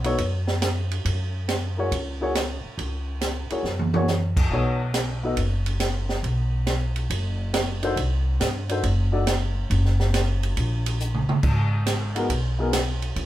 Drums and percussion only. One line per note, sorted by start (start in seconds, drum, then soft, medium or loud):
0.04 ride medium
0.18 kick soft
0.18 ride medium
0.47 snare medium
0.62 snare medium
0.62 hi-hat pedal medium
0.62 ride medium
0.91 ride medium
1.05 kick soft
1.05 ride medium
1.48 snare medium
1.48 hi-hat pedal soft
1.48 ride medium
1.92 kick soft
1.92 ride medium
2.35 snare medium
2.35 hi-hat pedal medium
2.35 ride medium
2.78 kick soft
2.78 ride medium
3.21 snare medium
3.21 hi-hat pedal medium
3.21 ride medium
3.50 ride soft
3.65 snare soft
3.79 high tom medium
3.94 high tom medium
4.08 snare medium
4.08 hi-hat pedal medium
4.37 kick medium
4.37 crash medium
4.50 kick soft
4.94 snare medium
4.94 hi-hat pedal medium
4.94 ride medium
5.37 kick soft
5.37 ride medium
5.66 ride soft
5.80 snare medium
5.80 hi-hat pedal medium
5.80 ride medium
6.09 snare medium
6.23 kick soft
6.23 ride medium
6.67 snare medium
6.67 hi-hat pedal medium
6.67 ride medium
6.96 ride soft
7.10 kick soft
7.10 ride medium
7.54 snare medium
7.54 hi-hat pedal medium
7.54 ride medium
7.83 ride soft
7.97 kick soft
7.97 ride medium
8.41 snare medium
8.41 hi-hat pedal medium
8.41 ride medium
8.69 ride medium
8.83 kick soft
8.83 ride medium
9.27 snare medium
9.27 hi-hat pedal medium
9.27 ride medium
9.70 kick soft
9.70 ride medium
9.85 snare soft
10.00 snare medium
10.14 snare medium
10.14 hi-hat pedal medium
10.14 ride medium
10.43 ride medium
10.57 kick soft
10.57 ride medium
10.86 ride medium
11.00 hi-hat pedal medium
11.14 mid tom medium
11.29 mid tom medium
11.43 kick medium
11.43 crash medium
11.86 snare medium
11.86 hi-hat pedal medium
11.86 ride medium
12.16 ride medium
12.30 kick soft
12.30 ride medium
12.73 snare medium
12.73 hi-hat pedal medium
12.73 ride medium
13.02 ride soft
13.16 kick soft
13.16 ride medium